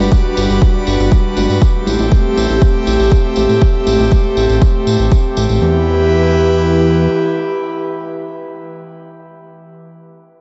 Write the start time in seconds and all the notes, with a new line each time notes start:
Already playing: G3 D4 F#4 B4 D6
0.12 kick, tambourine
0.37 G1, open hi-hat, tambourine
0.49 G1, tambourine
0.62 kick, tambourine
0.87 G1, open hi-hat, tambourine
0.99 G1, tambourine
1.12 kick, tambourine
1.37 G1, open hi-hat, tambourine, high conga
1.49 G2, tambourine
1.62 A3 C4 G4, kick, tambourine
1.87 A1, open hi-hat, tambourine, high conga
1.99 A1, tambourine, high conga
2.12 kick, tambourine
2.37 A1, open hi-hat, tambourine
2.49 A1, tambourine
2.62 kick, tambourine
2.87 A1, open hi-hat, tambourine
2.99 A1, tambourine
3.12 kick, tambourine
3.36 A1, open hi-hat, tambourine, high conga
3.49 A2, tambourine
3.61 kick, tambourine
3.87 A1, open hi-hat, tambourine, high conga
3.99 A1, tambourine, high conga
4.12 kick, tambourine
4.37 A1, open hi-hat, tambourine
4.49 A1, tambourine
4.62 kick, tambourine
4.87 A2, open hi-hat, tambourine
4.99 A1, tambourine
5.12 kick, tambourine
5.37 A1, open hi-hat, tambourine, high conga
5.49 A1, tambourine
5.62 E2 E3 E4 G4 B4